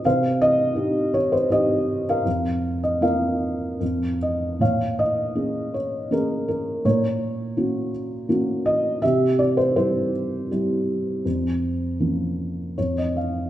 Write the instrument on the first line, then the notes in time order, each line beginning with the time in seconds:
felt piano
0.04 C3 C5 F5
0.41 D#5
0.75 C4 D#4 G4
1.14 C#5
1.32 C5
1.50 C4 D#4 G4 D#5
2.09 A#4 F5
2.25 F2
2.84 D#5
3.01 A#3 C4 F4 A#4 F5
3.80 F2
4.22 D#5
4.59 A#2 C#5 F5
4.99 D#5
5.35 A#3 C#4 G#4
5.74 C#5
6.11 A#3 C#4 G#4 A#4
6.48 A#4
6.85 A#2 A#4 C#5
7.57 A#3 C#4 F#4
8.29 A#3 C#4 F#4
8.66 D#5
9.02 C3 G4 E5
9.39 D5
9.57 C5
9.76 G3 C4 E4 C5
10.51 G3 C4 E4
11.25 F2
12.00 F3 A#3 C#4
12.78 F2 C#5
12.98 D#5
13.17 F5